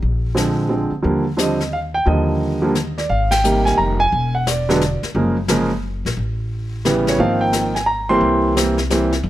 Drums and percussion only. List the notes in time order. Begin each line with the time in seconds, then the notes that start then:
0.02 brush sweep
0.37 snare, hi-hat pedal
1.05 brush sweep
1.38 snare, hi-hat pedal
1.60 snare
2.07 brush sweep
2.75 snare, hi-hat pedal
2.98 snare
3.10 brush sweep
3.31 snare, ride
3.44 hi-hat pedal
3.67 snare
4.14 brush sweep
4.47 snare, hi-hat pedal
4.70 snare
4.81 snare, hi-hat pedal
5.03 snare
5.15 brush sweep
5.48 snare, hi-hat pedal
6.06 snare
6.17 brush sweep
6.85 snare, hi-hat pedal
7.07 snare
7.19 brush sweep
7.53 snare, hi-hat pedal
7.76 snare
8.22 brush sweep
8.57 snare, hi-hat pedal
8.78 snare
8.90 snare, hi-hat pedal
9.12 snare
9.24 brush sweep